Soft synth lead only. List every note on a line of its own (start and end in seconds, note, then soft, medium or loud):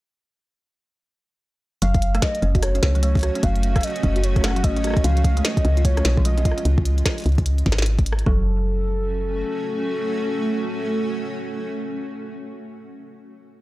1.82 2.24 F5 loud
2.22 2.62 D#5 loud
2.63 3.00 C#5 loud
3.03 3.45 C#5 medium
3.43 3.85 F5 loud
3.83 4.25 D#5 loud
4.24 4.45 C#5 medium
4.44 4.65 F#5 loud
4.64 5.04 D#5 medium
5.04 5.46 F5 loud
5.45 5.84 D#5 loud
5.85 6.26 C#5 medium
6.25 6.65 D#5 medium
8.26 12.25 A4 loud